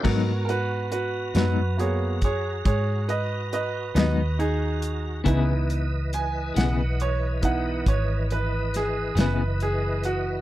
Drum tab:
CC |x-----------|------------|
HH |-xxxxxxxxxxx|xxxxxxxxxxxx|
SD |---o-----o--|---o----oo--|
BD |o----oo-----|o----oo-----|